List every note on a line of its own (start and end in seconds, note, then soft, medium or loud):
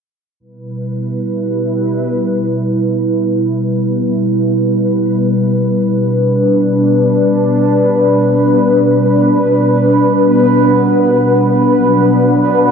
0.40 12.71 B2 medium
0.40 11.66 G3 medium
0.40 12.71 B3 medium
0.40 6.01 E4 medium
0.40 12.71 B4 medium
6.04 11.65 D4 medium
11.69 12.71 F#3 medium
11.69 12.71 D4 medium